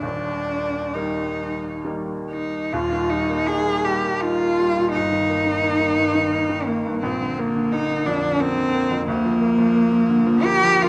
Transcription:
0.03 D#1 D#2 D4
0.95 D#3 G3 A#3 D#4
1.85 D#3 G3 A#3
2.31 D#4
2.73 D#1 D#2 F4
2.92 D#3
3.10 G3 D#4
3.29 A#3
3.47 D#4 G#4
3.67 A#3
3.85 G3 G4
4.05 A#3
4.21 D#4 F4
4.42 A#3
4.60 G3
4.78 A#2
4.93 G1 D#4
5.12 D#3
5.29 A#3
5.46 D#3
5.63 A#3
5.80 D#3
5.98 G2
6.15 D#3
6.32 A#3
6.49 D#3
6.67 A#3
6.86 G2
7.03 A#1 C4
7.21 D3
7.39 A#3
7.56 D3
7.73 A#3 D#4
7.90 D3
8.06 F2 D4
8.23 D3
8.40 A#3 C4
8.57 D3
8.74 A#3
8.90 F2
9.08 D2 A#3
9.24 F3
9.41 A#3
9.58 F3
9.75 A#3
9.92 F3
10.09 D3
10.27 F3
10.44 A#3 G4
10.64 F3
10.83 A#3 F4

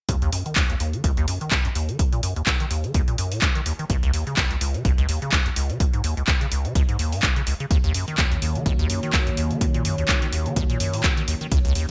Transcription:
0.09 D#2, kick, closed hi-hat
0.22 D#2, closed hi-hat
0.33 F#2, open hi-hat
0.46 D#3, closed hi-hat
0.56 D#2, kick, clap, closed hi-hat
0.70 D#2, closed hi-hat
0.80 D#2, open hi-hat
0.93 D#3, closed hi-hat
1.04 C#2, kick, closed hi-hat
1.17 D#2, closed hi-hat
1.28 F#2, open hi-hat
1.41 D#3, closed hi-hat
1.51 D#2, kick, clap, closed hi-hat
1.65 F#2, closed hi-hat
1.75 D#2, open hi-hat
1.89 D#3, closed hi-hat
1.99 D#2, kick, closed hi-hat
2.13 A#2, closed hi-hat
2.23 F#2, open hi-hat
2.36 D#2, closed hi-hat
2.47 D#2, kick, clap, closed hi-hat
2.60 D#3, closed hi-hat
2.71 D#2, open hi-hat
2.84 D#3, closed hi-hat
2.94 D#2, kick, closed hi-hat
3.08 A#2, closed hi-hat
3.18 F#2, open hi-hat
3.32 A#2, open hi-hat
3.42 D#2, kick, clap, closed hi-hat
3.55 D#3, closed hi-hat
3.66 D#2, open hi-hat
3.79 D#3, closed hi-hat
3.90 C#2, kick, closed hi-hat
4.03 C#2, closed hi-hat
4.14 D#2, open hi-hat
4.27 C#3, closed hi-hat
4.37 C#2, kick, clap, closed hi-hat
4.51 C#2, closed hi-hat
4.61 C#2, open hi-hat
4.74 C#3, closed hi-hat
4.85 B1, kick, closed hi-hat
4.98 C#2, closed hi-hat
5.09 D#2, open hi-hat
5.22 C#3, closed hi-hat
5.32 C#2, kick, clap, closed hi-hat
5.46 E2, closed hi-hat
5.56 C#2, open hi-hat
5.70 C#3, closed hi-hat
5.80 C#2, kick, closed hi-hat
5.93 G#2, closed hi-hat
6.04 D#2, open hi-hat
6.17 C#2, closed hi-hat
6.28 C#2, kick, clap, closed hi-hat
6.41 C#3, closed hi-hat
6.52 C#2, open hi-hat
6.65 C#3, closed hi-hat
6.75 C#2, kick, closed hi-hat
6.89 G#2, closed hi-hat
6.99 D#2, open hi-hat
7.12 G#2, open hi-hat
7.23 C#2, kick, clap, closed hi-hat
7.36 C#3, closed hi-hat
7.47 C#2, open hi-hat
7.60 C#3, closed hi-hat
7.71 D#2 D#3 A#3 F#4 C#5, kick, closed hi-hat
7.84 D#2, closed hi-hat
7.94 F#2, open hi-hat
8.08 D#3, closed hi-hat
8.18 D#2, kick, clap, closed hi-hat
8.32 D#2, closed hi-hat
8.42 D#2, open hi-hat
8.55 D#3, closed hi-hat
8.66 C#2, kick, closed hi-hat
8.79 D#2, closed hi-hat
8.90 F#2, open hi-hat
9.03 D#3, closed hi-hat
9.13 D#2, kick, clap, closed hi-hat
9.27 F#2, closed hi-hat
9.37 D#2, open hi-hat
9.51 D#3, closed hi-hat
9.61 D#2, kick, closed hi-hat
9.74 A#2, closed hi-hat
9.85 F#2, open hi-hat
9.98 D#2, closed hi-hat
10.09 D#2, kick, clap, closed hi-hat
10.22 D#3, closed hi-hat
10.33 D#2, open hi-hat
10.46 D#3, closed hi-hat
10.56 D#2, kick, closed hi-hat
10.70 A#2, closed hi-hat
10.80 F#2, open hi-hat
10.93 A#2, open hi-hat
11.04 D#2, kick, clap, closed hi-hat
11.17 D#3, closed hi-hat
11.28 D#2, open hi-hat
11.41 D#3, closed hi-hat
11.52 C#2 C#3 B3 E4 C#5, kick, closed hi-hat
11.65 C#2, closed hi-hat
11.75 D#2, open hi-hat

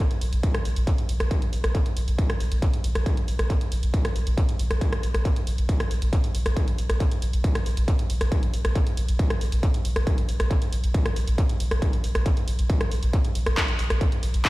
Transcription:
0.11 closed hi-hat
0.21 A#1, open hi-hat
0.33 A#1, closed hi-hat
0.43 kick, closed hi-hat
0.54 cross-stick, closed hi-hat
0.65 A#1, open hi-hat
0.76 A#1, closed hi-hat
0.87 kick, closed hi-hat
0.98 closed hi-hat
1.09 A#1, open hi-hat
1.20 A#1, cross-stick, closed hi-hat
1.31 kick, closed hi-hat
1.42 closed hi-hat
1.53 A#1, open hi-hat
1.64 A#1, cross-stick, closed hi-hat
1.75 kick, closed hi-hat
1.86 closed hi-hat
1.97 A#1, open hi-hat
2.08 A#1, closed hi-hat
2.19 kick, closed hi-hat
2.30 cross-stick, closed hi-hat
2.40 A#1, open hi-hat
2.51 A#1, closed hi-hat
2.62 kick, closed hi-hat
2.73 closed hi-hat
2.84 A#1, open hi-hat
2.95 A#1, cross-stick, closed hi-hat
3.06 kick, closed hi-hat
3.17 closed hi-hat
3.28 A#1, open hi-hat
3.39 A#1, cross-stick, closed hi-hat
3.50 kick, closed hi-hat
3.61 closed hi-hat
3.72 A#1, open hi-hat
3.83 A#1, closed hi-hat
3.94 kick, closed hi-hat
4.05 cross-stick, closed hi-hat
4.16 A#1, open hi-hat
4.27 A#1, closed hi-hat
4.38 kick, closed hi-hat
4.49 closed hi-hat
4.59 A#1, open hi-hat
4.71 A#1, cross-stick, closed hi-hat
4.81 kick, closed hi-hat
4.93 cross-stick, closed hi-hat
5.03 A#1, open hi-hat
5.14 A#1, cross-stick, closed hi-hat
5.25 kick, closed hi-hat
5.36 closed hi-hat
5.47 A#1, open hi-hat
5.58 A#1, closed hi-hat
5.69 kick, closed hi-hat
5.80 cross-stick, closed hi-hat
5.91 A#1, open hi-hat
6.02 A#1, closed hi-hat
6.13 kick, closed hi-hat
6.24 closed hi-hat
6.35 A#1, open hi-hat
6.46 A#1, cross-stick, closed hi-hat
6.57 kick, closed hi-hat
6.68 closed hi-hat
6.78 A#1, open hi-hat
6.90 A#1, cross-stick, closed hi-hat
7.00 kick, closed hi-hat
7.11 closed hi-hat
7.22 A#1, open hi-hat
7.33 A#1, closed hi-hat
7.44 kick, closed hi-hat
7.55 cross-stick, closed hi-hat
7.66 A#1, open hi-hat
7.77 A#1, closed hi-hat
7.88 kick, closed hi-hat
7.99 closed hi-hat
8.10 A#1, open hi-hat
8.21 A#1, cross-stick, closed hi-hat
8.32 kick, closed hi-hat
8.43 closed hi-hat
8.54 A#1, open hi-hat
8.65 A#1, cross-stick, closed hi-hat
8.75 kick, closed hi-hat
8.87 closed hi-hat
8.97 A#1, open hi-hat
9.08 A#1, closed hi-hat
9.19 kick, closed hi-hat
9.30 cross-stick, closed hi-hat
9.41 A#1, open hi-hat
9.52 A#1, closed hi-hat
9.63 kick, closed hi-hat
9.74 closed hi-hat
9.85 A#1, open hi-hat
9.96 A#1, cross-stick, closed hi-hat
10.07 kick, closed hi-hat
10.18 closed hi-hat
10.29 A#1, open hi-hat
10.40 A#1, cross-stick, closed hi-hat
10.51 kick, closed hi-hat
10.62 closed hi-hat
10.73 A#1, open hi-hat
10.84 A#1, closed hi-hat
10.94 kick, closed hi-hat
11.06 cross-stick, closed hi-hat
11.16 A#1, open hi-hat
11.27 A#1, closed hi-hat
11.38 kick, closed hi-hat
11.49 closed hi-hat
11.60 A#1, open hi-hat
11.71 A#1, cross-stick, closed hi-hat
11.82 kick, closed hi-hat
11.93 closed hi-hat
12.04 A#1, open hi-hat
12.15 A#1, cross-stick, closed hi-hat
12.26 kick, closed hi-hat
12.37 closed hi-hat
12.48 A#1, open hi-hat
12.59 A#1, closed hi-hat
12.70 kick, closed hi-hat
12.81 cross-stick, closed hi-hat
12.91 A#1, open hi-hat
13.03 A#1, closed hi-hat
13.13 kick, closed hi-hat
13.25 closed hi-hat
13.35 A#1, open hi-hat
13.46 A#1, cross-stick, closed hi-hat
13.57 kick, clap, closed hi-hat
13.68 closed hi-hat
13.79 A#1, open hi-hat
13.90 A#1, cross-stick, closed hi-hat
14.01 kick, closed hi-hat
14.12 closed hi-hat
14.23 A#1, open hi-hat
14.34 A#1, closed hi-hat
14.45 kick, clap, closed hi-hat

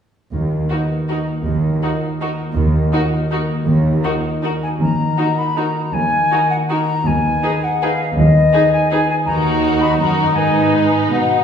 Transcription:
0.32 D#2 D#3
0.51 A#3
0.70 B3 D#4 F#4 A#4
0.90 A#3
1.08 D#4 F#4 A#4
1.27 A#3
1.45 D#2 D#3
1.63 D#4
1.82 D#4 F4 F#4 A#4
2.01 A#3
2.21 D#4 F#4 A#4
2.39 A#3
2.56 D#2 D#3
2.73 D#4
2.92 D#4 F4 F#4 A#4
3.11 A#3
3.30 D#4 F#4 A#4
3.49 A#3
3.66 D#2 D#3
3.84 D#4
4.03 D#4 F4 F#4 A#4
4.24 A#3
4.43 D#4 F#4 A#4
4.62 A#3 G#5
4.81 D#2 D#3 A#5
4.99 A#3
5.18 D#4 F#4 A#4
5.38 F#5 B5
5.56 D#4 F#4 A#4 A#5
5.76 F#4
5.93 D#2 D#3 G#5
6.12 A#3
6.31 D#4 F#4 A#4
6.50 F#5
6.69 D#4 F#4 A#4 A#5
6.88 F#4
7.06 D#2 D#3 G#5
7.24 B3
7.43 D#4 G#4 B4 D#5
7.63 F#5 G#5
7.82 D#4 G#4 B4 F5
8.01 D#5
8.18 D#2 D#3 D#5
8.35 B3
8.53 D#4 G#4 B4 D#5
8.72 G#5
8.91 D#4 G#4 B4 G#5
9.10 D#5 G#5
9.25 D#2 D#3 D#4 F#4 A#4 A#5
9.45 A#3
9.63 D#5
9.81 F#5 B5
9.98 F#2 D#4 F#4 A#4 A#5
10.19 D#5
10.35 G#2 D#4 B4 G#5
10.54 B3
10.72 D#5
10.91 B4
11.12 B2 D#5 F#5
11.31 D#4

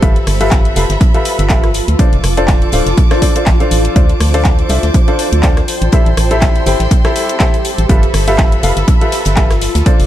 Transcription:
Already playing: G4 A4 A5 E6
0.02 G1 F4 G4 A4 B4 E5 B5, kick, closed hi-hat
0.16 closed hi-hat
0.22 B4
0.27 G1, cross-stick, open hi-hat
0.41 F4 G4 A4 B4 E5, closed hi-hat
0.51 kick, snare, clap, closed hi-hat
0.65 closed hi-hat
0.76 F1 F4 G4 A4 B4 F5, closed hi-hat, open hi-hat
0.90 G1, snare, closed hi-hat
1.01 kick, closed hi-hat
1.14 F4 G4 A4 B4 E5, closed hi-hat
1.25 closed hi-hat, open hi-hat
1.39 G1, closed hi-hat
1.49 F4 G4 A4 B4 E5, kick, snare, clap, closed hi-hat
1.64 cross-stick, snare, closed hi-hat
1.74 snare, closed hi-hat, open hi-hat
1.88 D2, closed hi-hat
1.99 D4 F4 A4 C5 D5 D6, kick, closed hi-hat
2.13 F1, closed hi-hat
2.24 F1, cross-stick, closed hi-hat, open hi-hat
2.37 D4 F4 A4 C5 D5, closed hi-hat
2.48 kick, snare, clap, closed hi-hat
2.62 C5, closed hi-hat
2.72 D1 D4 F4 A4 C5 F5, closed hi-hat, open hi-hat
2.86 F1 D5, snare, closed hi-hat
2.98 kick, closed hi-hat
3.11 D4 F4 A4 C5 D5, cross-stick, snare, closed hi-hat
3.22 D4 F4 A4 C5 D5, kick, closed hi-hat, open hi-hat
3.36 D4 F4 A4 C5 D5, closed hi-hat
3.46 A1, kick, snare, clap, closed hi-hat
3.60 D4 F4 A4 C5 F5, closed hi-hat
3.71 A1, closed hi-hat, open hi-hat
3.85 closed hi-hat
3.96 D2 D4 F4 A4 C5 D5 D6, kick, closed hi-hat
4.09 closed hi-hat
4.20 D2, cross-stick, open hi-hat
4.34 D4 F4 A4 C5 D5, closed hi-hat
4.45 kick, snare, clap, closed hi-hat
4.59 closed hi-hat
4.69 C2 D4 F4 A4 C5 E5, closed hi-hat, open hi-hat
4.83 D2, snare, closed hi-hat
4.94 kick, closed hi-hat
5.08 D4 F4 A4 C5 D5, closed hi-hat
5.19 closed hi-hat, open hi-hat
5.32 D2, closed hi-hat
5.43 D4 F4 A4 C5 D5, kick, snare, clap, closed hi-hat
5.57 cross-stick, snare, closed hi-hat
5.68 G4 A4 G5 C6, snare, closed hi-hat, open hi-hat
5.82 A1, closed hi-hat
5.92 E4 G4 A4 C5 E5, kick, closed hi-hat
6.06 A1, closed hi-hat
6.17 A1, cross-stick, closed hi-hat, open hi-hat
6.31 E4 G4 A4 C5 E5, closed hi-hat
6.41 kick, snare, clap, closed hi-hat
6.56 closed hi-hat
6.66 G1 E4 G4 A4 C5 G5 E6, closed hi-hat, open hi-hat
6.80 A1, snare, closed hi-hat
6.91 kick, closed hi-hat
7.05 E4 G4 A4 C5 E5, cross-stick, snare, closed hi-hat
7.16 closed hi-hat, open hi-hat
7.29 closed hi-hat
7.40 E4 G4 A4 C5 E5, kick, snare, clap, closed hi-hat
7.54 closed hi-hat
7.65 closed hi-hat, open hi-hat
7.78 A1, closed hi-hat
7.89 G1 F4 G4 A4 B4 E5 B5, kick, closed hi-hat
8.03 B4, closed hi-hat
8.14 G1, cross-stick, open hi-hat
8.28 F4 G4 A4 B4 E5, closed hi-hat
8.38 kick, snare, clap, closed hi-hat
8.52 closed hi-hat
8.63 F1 F4 G4 A4 B4 F5, closed hi-hat, open hi-hat
8.77 G1, snare, closed hi-hat
8.88 kick, closed hi-hat
9.01 F4 G4 A4 B4 E5, closed hi-hat
9.12 snare, closed hi-hat, open hi-hat
9.25 G1, snare, closed hi-hat
9.36 F4 G4 A4 B4 E5, kick, snare, clap, closed hi-hat
9.50 cross-stick, snare, closed hi-hat
9.61 snare, closed hi-hat, open hi-hat
9.75 D2, snare, closed hi-hat
9.86 D4 F4 A4 C5 D5 D6, kick, closed hi-hat
10.00 F1, open hi-hat

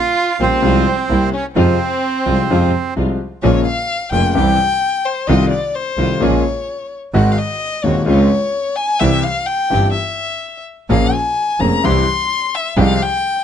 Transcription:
Already playing: F4 F5
0.39 A#1 A#2 C#3 G3 A#3 C4 F4 C5
0.62 C2 C3 F3 G#3 C4 F4
1.09 C2 C3 G3 A#3 C4 E4
1.33 C#4 C#5
1.55 F2 C3 F3 G#3 C4 F4
1.59 C5
2.25 C2 C3 F3 G#3 C4 F4
2.49 F2 C3 F3 G#3 C4 F4
2.96 C2 C3 F3 G#3 C4 F4
3.43 A#1 A#2 C#3 G#3 A#3 C#4 F4 G#4 C#5
3.66 F5
4.12 F1 F2 C#3 G#3 A#3 C#4 F4 G#4 G5
4.34 C2 C3 E3 G3 C4 E4 G4 G5
5.05 C5
5.27 C2 C3 D#3 A3 C4 D#4 F4 D#5
5.50 D5
5.75 C5
5.97 C2 C3 D#3 A3 C4 D#4 F4
6.20 A#1 A#2 C#3 G#3 A#3 C#4 F4 G#4 C#5
7.14 G#1 G#2 D#3 G#3 C4 F#4 F#5
7.32 F5
7.38 D#5
7.83 D#1 D#2 D#3 G#3 C4 F#4 C#5
8.06 C#2 C#3 G#3 C4 C#4 F4 C#5
8.76 G#5
9.00 C2 C3 E3 G3 C4 E4 G4 E5
9.23 F5
9.46 G5
9.70 G1 G2 E3 G3 C4 E4 G4
9.93 E5
10.89 A#1 A#2 F3 A#3 C#4 G#4 F5
11.13 G#5
11.59 F1 F2 F3 A#3 C#4 G#4 A#5
11.83 C2 C3 E3 G3 C4 E4 G4 C6
12.55 E5
12.76 C2 C3 F3 G#3 C4 F4 G4 F5
13.02 G5

